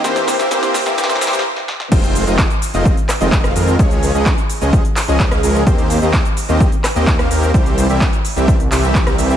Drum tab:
CC |--------------------------------|x-------------------------------|--------------------------------|--------------------------------|
HH |x-x-o-x-x-x-o---x-x-o-x---------|x-x-o-x-x-x-o-x-x-x-o-x-x-x-o-x-|x-x-o-x-x-x-o-x-x-x-o-x-x-x-o-x-|x-x-o-x-x-x-o-x-x-x-o-x-x-x-o-x-|
SH |x-x-x-x-x-x-x-x-x-x-x-x---------|x-x-x-x-x-x-x-x-x-x-x-x-x-x-x-x-|x-x-x-x-x-x-x-x-x-x-x-x-x-x-x-x-|x-x-x-x-x-x-x-x-x-x-x-x-x-x-x-x-|
CP |--------------------------------|--------x-----------x---x-------|--------x-----------x---x-------|--------x-----------x---x-------|
SD |o-o-o-o-o-o-o-o-oooooooo--o-o-o-|--------------------r-----r-----|--------------------------r-----|--------------------r-----r-----|
BD |--------------------------------|o-------o-------o-------o-------|o-------o-------o-------o-------|o-------o-------o-------o-------|

CC |--------------------------------|
HH |x-x-o-x-x-x-o-x-x-x-o-x-x-x-o-x-|
SH |x-x-x-x-x-x-x-x-x-x-x-x-x-x-x-x-|
CP |--------x-----------x---x-------|
SD |--------------------------r-----|
BD |o-------o-------o-------o-------|